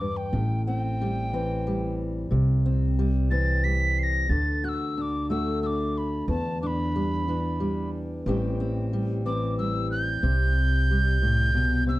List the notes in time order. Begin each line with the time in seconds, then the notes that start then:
Already playing: E2 D4 D6
0.01 G2
0.17 G5
0.33 A1 A2
0.67 C4 G5
1.01 G3
1.33 E3 C4
1.67 G3
2.31 C2 C3
2.66 C4
2.99 G3
3.31 E3 C4 A6
3.64 G3 B6
3.99 C7
4.03 A#6
4.29 D2 D3 A6
4.64 F#4 F#6
4.69 E6
4.98 D4 E6
5.02 D6
5.30 A3 F#4 E6
5.62 D4 E6
5.67 D6
5.98 B5
6.28 E2 A5
6.62 D4 D6
6.67 B5
6.96 G3
7.28 E3 D4
7.60 G3
8.26 A1 A2 E3 G3 C4 G4
8.60 C4
8.93 G3
9.25 E3 C4 D6
9.58 G3 E6
9.91 G6
10.23 C2 C3
10.91 G3
11.22 A2
11.54 B2
11.87 C3 E6